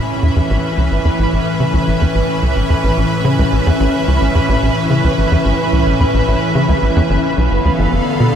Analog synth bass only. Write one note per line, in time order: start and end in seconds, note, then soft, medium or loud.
0.23 0.30 E2 medium
0.36 0.41 E2 medium
0.50 0.58 A1 medium
0.77 0.89 C#2 medium
0.91 0.99 A1 medium
1.05 1.10 E2 medium
1.19 1.27 A1 loud
1.33 1.40 A1 medium
1.60 1.72 C#3 medium
1.73 1.78 C#2 loud
1.87 1.95 A1 medium
2.01 2.06 E2 loud
2.15 2.23 A1 loud
2.42 2.54 C#2 medium
2.56 2.64 A1 medium
2.70 2.75 E2 medium
2.83 2.91 A1 loud
2.97 3.05 A1 medium
3.25 3.37 C#3 medium
3.39 3.43 C#2 loud
3.52 3.60 A1 medium
3.67 3.71 E2 loud
3.80 3.88 A1 loud
4.07 4.19 C#2 medium
4.21 4.29 A1 medium
4.35 4.40 E2 medium
4.49 4.57 A1 loud
4.63 4.70 A1 medium
4.90 5.02 C#3 medium
5.04 5.09 C#2 loud
5.18 5.26 A1 medium
5.32 5.36 E2 loud
5.45 5.53 A1 loud
5.72 5.84 C#2 medium
5.86 5.94 A1 medium
6.00 6.05 E2 medium
6.14 6.22 A1 loud
6.28 6.36 A1 medium
6.55 6.67 C#3 medium
6.69 6.74 C#2 loud
6.82 6.90 A1 medium
6.96 7.01 E2 loud
7.10 7.18 G1 loud
7.37 7.49 B1 medium
7.51 7.59 G1 medium
7.65 7.70 D2 medium
7.79 7.87 G1 loud
7.92 8.01 G1 medium
8.20 8.32 B2 medium